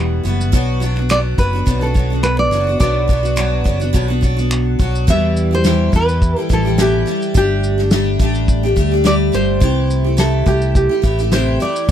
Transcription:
Already playing: E1 E3 G3 B3 F#4
0.23 F#1 E3 G3 B3 F#4, shaker
0.41 shaker
0.52 B1 B2 F#3 B3 D4 F#4, kick, shaker
0.80 F#3 B3 D4 F#4, shaker
0.96 B3 D4 F#4, finger snap
1.09 B2 F#3 B3 D4 F#4 D5, finger snap, shaker
1.38 F#1 F#3 B3 D4 F#4 B4, kick, shaker
1.53 B3 D4 F#4
1.66 B1 B2 F#3 B3 D4 F#4, kick, shaker
1.81 B3 D4 F#4 A4
1.94 F#3 B3 D4 F#4, kick, shaker
2.10 B3 D4 F#4
2.23 B4, finger snap, shaker
2.39 D5
2.51 F#1 F#3 B3 D4 F#4, shaker
2.67 B3 D4 F#4
2.80 B1 B2 F#3 B3 D4 F#4 D5, kick, shaker
3.08 F#3 B3 D4 F#4, kick, shaker
3.23 B3 D4 F#4, shaker
3.36 B2 F#3 B3 D4 F#4, finger snap, shaker
3.64 F#1 F#3 B3 D4 F#4, kick, shaker
3.80 B3 D4 F#4, shaker
3.93 B1 B2 F#3 B3 D4 F#4, kick, shaker
4.08 B3 D4 F#4
4.21 F#3 B3 D4 F#4, kick, shaker
4.37 B3 D4 F#4, shaker
4.51 finger snap, shaker
4.79 B1 F#3 B3 D4 F#4, kick, shaker
4.95 shaker
5.07 E2 B2 E3 G3 E4 G4 E5, kick, shaker
5.37 shaker
5.51 E3 G3 E4 G4 C5
5.64 E2 B2 E3 G3 E4 G4, snare, shaker
5.92 E2 E3 G3 E4 G4 B4, kick, shaker
6.08 shaker
6.22 kick, shaker
6.36 E3 G3 E4 G4
6.41 A4
6.49 A1 E3 G3 E4 G4, kick, shaker
6.53 A4
6.65 E3 G3 E4 G4
6.78 E2 B2 E3 G3 E4 G4, snare, shaker
7.06 E3 G3 E4 G4, shaker
7.22 shaker
7.34 G1 G3 A3 D4 G4, kick, shaker
7.64 shaker
7.78 A3 D4 G4, snare
7.91 G3 A3 D4 G4, snare, shaker
8.19 A1 G3 A3 D4 G4, kick, shaker
8.35 shaker
8.48 kick, shaker
8.63 A3 D4 G4
8.76 D2 G3 A3 D4 G4, kick, shaker
8.92 A3 D4 G4
9.04 G3 A3 D4 G4 D5, snare, shaker
9.32 G1 G3 A3 D4 G4 C5, shaker
9.60 C2 C3 E3 A3 E4 G4, kick, shaker
9.90 shaker
10.04 A3 E4 G4
10.17 C3 E3 A3 E4 G4 A4, snare, shaker
10.46 C2 E3 A3 E4 G4, kick, shaker
10.62 shaker
10.75 G4, kick, shaker
10.89 A3 E4 G4
11.02 A1 E3 A3 E4 G4, kick, shaker
11.19 A3 E4 G4, shaker
11.32 C3 E3 A3 E4 G4 C5, snare, shaker
11.60 E3 A3 E4 G4 D5, shaker
11.76 shaker

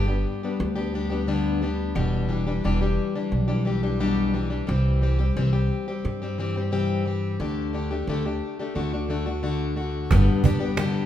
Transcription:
Already playing: G1
0.08 G3 B3 D4 G4
0.43 G3 B3 D4 G4
0.60 D2
0.76 G3 B3 D4 G4
0.94 G3 B3 D4 G4
1.10 G3 B3 D4 G4
1.27 G2 D3 G3 B3 D4 G4
1.62 G3 B3 D4 G4
1.95 E1 E2 B2 E3 G3 D4 G4
2.29 E3 G3 D4 G4
2.47 E3 G3 D4 G4
2.64 E1 E2 B2 E3 G3 D4 G4
2.81 E3 G3 D4 G4
3.15 E3 G3 D4 G4
3.32 B1
3.48 E3 G3 D4 G4
3.65 E3 G3 D4 G4
3.83 E3 G3 D4 G4
3.99 E2 B2 E3 G3 D4 G4
4.34 E3 G3 D4 G4
4.50 E3 G3 D4 G4
4.67 C2 C3 E3 G3 C4 G4
5.02 E3 G3 C4 G4
5.19 G3 C4 G4
5.36 C2 C3 E3 G3 C4 G4
5.53 G3 C4 G4
5.88 G3 C4 G4
6.05 G2
6.22 G3 C4 G4
6.38 E3 G3 C4 G4
6.56 G3 C4 G4
6.71 C3 E3 G3 C4 G4
7.05 E3 G3 C4 G4
7.40 D2 D3 A3 D4 G4
7.73 D3 A3 D4 G4
7.91 A3 D4 G4
8.07 D2 D3 A3 D4 G4
8.26 A3 D4 G4
8.59 A3 D4 G4
8.75 D2 D3 A3 D4 F#4
8.93 A3 D4 F#4
9.08 D3 A3 D4 F#4
9.26 A3 D4 F#4
9.43 D3 A3 D4 F#4
9.76 D3 A3 D4 F#4
10.11 G1 G2 D3 G3 B3 D4 G4, cajon bass, cajon slap
10.44 G1 G3 B3 D4 G4, cajon bass
10.60 G3 B3 D4 G4
10.77 G2 D3 G3 B3 D4 G4, cajon slap

